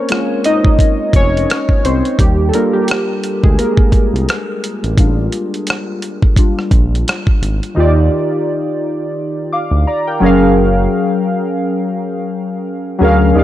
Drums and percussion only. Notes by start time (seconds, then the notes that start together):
0.09 cross-stick, closed hi-hat
0.44 closed hi-hat
0.65 kick
0.79 kick, closed hi-hat
1.13 kick, closed hi-hat
1.37 closed hi-hat
1.50 cross-stick, closed hi-hat
1.69 kick
1.85 closed hi-hat
2.05 closed hi-hat
2.19 kick, closed hi-hat
2.54 closed hi-hat
2.88 cross-stick, closed hi-hat
3.24 closed hi-hat
3.44 kick
3.59 closed hi-hat
3.77 kick
3.92 kick, closed hi-hat
4.16 closed hi-hat
4.29 cross-stick, closed hi-hat
4.64 closed hi-hat
4.84 closed hi-hat
4.98 kick, closed hi-hat
5.32 closed hi-hat
5.54 closed hi-hat
5.67 cross-stick, closed hi-hat
6.02 closed hi-hat
6.22 kick
6.36 kick, closed hi-hat
6.59 cross-stick
6.71 kick, closed hi-hat
6.95 closed hi-hat
7.08 cross-stick, closed hi-hat
7.27 kick
7.43 closed hi-hat
7.63 closed hi-hat